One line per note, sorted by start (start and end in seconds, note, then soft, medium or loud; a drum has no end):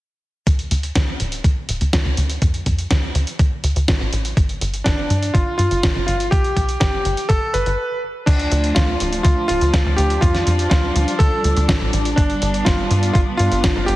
0.47 0.67 D2 medium
0.47 kick loud
0.47 closed hi-hat medium
0.59 closed hi-hat soft
0.71 0.92 D2 medium
0.71 closed hi-hat medium
0.83 closed hi-hat soft
0.95 1.16 D2 medium
0.95 kick loud
0.95 snare loud
0.95 closed hi-hat medium
1.20 1.40 D1 medium
1.20 closed hi-hat medium
1.32 closed hi-hat soft
1.44 1.55 D2 medium
1.44 kick loud
1.44 closed hi-hat medium
1.69 1.79 D1 medium
1.69 closed hi-hat medium
1.81 1.91 D2 medium
1.81 closed hi-hat medium
1.93 2.03 D2 medium
1.93 kick loud
1.93 snare loud
1.93 closed hi-hat medium
2.05 2.16 D2 medium
2.17 2.38 D2 loud
2.17 closed hi-hat medium
2.30 closed hi-hat soft
2.42 2.62 F2 medium
2.42 kick loud
2.42 closed hi-hat medium
2.54 closed hi-hat soft
2.66 2.87 F2 medium
2.66 kick medium
2.66 closed hi-hat medium
2.79 closed hi-hat soft
2.91 3.11 D2 medium
2.91 kick loud
2.91 snare loud
2.91 closed hi-hat medium
3.15 3.25 D2 medium
3.15 closed hi-hat medium
3.27 closed hi-hat soft
3.39 3.50 D2 medium
3.39 kick loud
3.39 closed hi-hat medium
3.64 3.74 D2 medium
3.64 closed hi-hat medium
3.76 3.86 D2 medium
3.76 closed hi-hat soft
3.88 3.98 A1 loud
3.88 kick loud
3.88 snare loud
3.88 closed hi-hat medium
4.01 4.11 A1 medium
4.13 4.33 A1 medium
4.13 closed hi-hat medium
4.25 closed hi-hat soft
4.37 4.57 G1 medium
4.37 kick loud
4.37 closed hi-hat medium
4.49 closed hi-hat soft
4.61 4.82 G1 medium
4.61 closed hi-hat medium
4.74 closed hi-hat soft
4.84 5.06 G1 medium
4.84 5.35 D4 medium
4.84 kick loud
4.84 snare loud
4.84 closed hi-hat medium
5.10 5.31 G2 medium
5.10 closed hi-hat medium
5.23 closed hi-hat soft
5.34 5.45 G1 loud
5.34 5.56 F4 medium
5.34 kick loud
5.34 closed hi-hat medium
5.58 5.69 G2 medium
5.58 6.05 F4 medium
5.58 closed hi-hat medium
5.71 5.81 G1 medium
5.71 closed hi-hat soft
5.83 5.94 G1 medium
5.83 kick loud
5.83 snare loud
5.83 closed hi-hat medium
5.95 6.06 G1 medium
6.07 6.28 G1 loud
6.07 6.32 F4 medium
6.07 closed hi-hat medium
6.20 closed hi-hat soft
6.31 6.53 B1 medium
6.31 6.77 G4 medium
6.31 kick loud
6.31 closed hi-hat medium
6.44 closed hi-hat soft
6.57 6.77 B1 medium
6.57 kick medium
6.57 closed hi-hat medium
6.69 closed hi-hat soft
6.80 7.01 G1 medium
6.80 7.31 G4 medium
6.80 kick loud
6.80 snare loud
6.80 closed hi-hat medium
7.05 7.16 G1 loud
7.05 closed hi-hat medium
7.17 closed hi-hat soft
7.29 7.40 G1 medium
7.29 7.54 A4 loud
7.29 kick loud
7.29 closed hi-hat medium
7.54 7.64 G1 medium
7.54 7.99 B4 medium
7.54 closed hi-hat medium
7.66 7.76 G1 medium
7.66 closed hi-hat soft
8.26 8.48 D2 loud
8.26 12.14 F3 medium
8.26 10.21 A3 medium
8.26 8.77 D4 medium
8.26 13.96 D4 medium
8.26 kick loud
8.26 closed hi-hat medium
8.26 crash medium
8.39 closed hi-hat soft
8.52 8.72 D2 medium
8.52 closed hi-hat medium
8.64 closed hi-hat medium
8.75 8.96 D2 medium
8.75 9.22 F4 medium
8.75 kick loud
8.75 snare loud
8.75 closed hi-hat medium
9.00 9.21 D1 medium
9.00 closed hi-hat medium
9.13 closed hi-hat medium
9.23 9.35 D2 medium
9.23 9.46 F4 medium
9.23 kick loud
9.23 closed hi-hat medium
9.48 9.59 D1 medium
9.48 9.99 F4 loud
9.48 closed hi-hat medium
9.61 9.72 D2 medium
9.61 closed hi-hat medium
9.74 9.84 D2 medium
9.74 kick loud
9.74 snare loud
9.74 closed hi-hat medium
9.86 9.96 D2 medium
9.96 10.19 D2 loud
9.96 10.22 G4 medium
9.96 closed hi-hat medium
10.10 closed hi-hat medium
10.21 10.43 F2 medium
10.21 13.96 G3 medium
10.21 10.67 F4 medium
10.21 kick loud
10.21 closed hi-hat medium
10.35 snare soft
10.35 closed hi-hat soft
10.47 10.67 F2 medium
10.47 closed hi-hat medium
10.59 closed hi-hat soft
10.70 10.92 D2 medium
10.70 11.21 F4 medium
10.70 kick loud
10.70 snare loud
10.70 closed hi-hat medium
10.96 11.06 D2 medium
10.96 closed hi-hat medium
11.08 closed hi-hat medium
11.19 11.30 D2 medium
11.19 11.89 A4 medium
11.19 kick loud
11.19 closed hi-hat medium
11.44 11.55 D2 medium
11.44 closed hi-hat medium
11.57 11.67 D2 medium
11.57 closed hi-hat soft
11.69 11.79 A1 loud
11.69 kick loud
11.69 snare loud
11.69 closed hi-hat medium
11.81 11.91 A1 medium
11.93 12.14 A1 medium
11.93 closed hi-hat medium
12.05 closed hi-hat medium
12.16 12.38 G1 medium
12.16 13.96 B3 medium
12.16 12.62 D4 medium
12.16 kick loud
12.16 closed hi-hat medium
12.30 closed hi-hat soft
12.42 12.62 G1 loud
12.42 closed hi-hat medium
12.54 closed hi-hat soft
12.65 12.87 G1 medium
12.65 13.11 F4 medium
12.65 kick loud
12.65 snare loud
12.65 closed hi-hat medium
12.91 13.11 G2 medium
12.91 closed hi-hat medium
13.03 closed hi-hat soft
13.13 13.25 G1 loud
13.13 13.19 F4 medium
13.13 kick loud
13.13 closed hi-hat medium
13.37 13.50 G2 medium
13.37 13.89 F4 medium
13.37 closed hi-hat medium
13.52 13.62 G1 medium
13.52 closed hi-hat soft
13.64 13.74 G1 medium
13.64 kick loud
13.64 snare loud
13.64 closed hi-hat medium
13.76 13.86 G1 medium
13.86 13.96 G1 loud
13.86 13.96 G4 medium
13.86 closed hi-hat medium